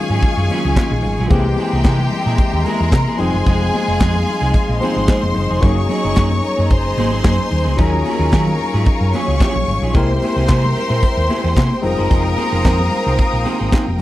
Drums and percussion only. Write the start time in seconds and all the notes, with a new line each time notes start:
0.22 kick, closed hi-hat, muted conga
0.50 open hi-hat, high conga
0.75 kick, snare, clap, closed hi-hat, muted conga, high conga
0.90 high conga
1.02 open hi-hat, low conga
1.31 kick, closed hi-hat, muted conga
1.57 open hi-hat, high conga
1.84 kick, snare, clap, closed hi-hat, muted conga
1.99 high conga, low conga
2.11 open hi-hat, low conga
2.27 snare
2.38 kick, closed hi-hat
2.66 open hi-hat, high conga
2.92 kick, snare, clap, closed hi-hat, muted conga, high conga
3.06 high conga
3.19 open hi-hat, muted conga, low conga
3.46 kick, closed hi-hat
3.74 open hi-hat, high conga
4.00 kick, snare, clap, closed hi-hat
4.15 high conga, low conga
4.27 open hi-hat, muted conga, low conga
4.43 snare
4.54 kick, closed hi-hat, muted conga
4.82 open hi-hat, high conga
5.08 kick, snare, clap, closed hi-hat, high conga
5.22 high conga
5.34 open hi-hat, muted conga, low conga
5.63 kick, closed hi-hat
5.89 open hi-hat, high conga
6.15 kick, snare, clap, closed hi-hat
6.31 high conga, low conga
6.42 open hi-hat, low conga
6.70 kick, closed hi-hat
6.98 open hi-hat, high conga
7.24 kick, snare, clap, closed hi-hat, high conga
7.39 high conga
7.51 open hi-hat, low conga
7.78 kick, closed hi-hat
8.06 open hi-hat, high conga
8.32 kick, snare, clap, closed hi-hat
8.47 high conga, low conga
8.59 open hi-hat, low conga
8.75 snare
8.86 kick, closed hi-hat
9.13 open hi-hat, muted conga, high conga
9.40 kick, snare, clap, closed hi-hat, muted conga, high conga
9.56 high conga
9.67 open hi-hat, low conga
9.95 kick, closed hi-hat, muted conga
10.22 open hi-hat, high conga
10.48 kick, snare, clap, closed hi-hat
10.65 high conga, low conga
10.76 open hi-hat, muted conga, low conga
11.03 kick, closed hi-hat, muted conga
11.30 open hi-hat, muted conga, high conga
11.57 kick, snare, clap, closed hi-hat, muted conga, high conga
11.70 high conga
11.83 open hi-hat, low conga
12.11 kick, closed hi-hat, muted conga
12.38 open hi-hat, muted conga, high conga
12.64 kick, snare, clap, closed hi-hat
12.80 high conga, low conga
12.91 open hi-hat, low conga
13.07 snare
13.19 kick, closed hi-hat, muted conga
13.46 open hi-hat, high conga
13.72 kick, snare, clap, closed hi-hat, muted conga, high conga
13.87 high conga
13.99 muted conga, low conga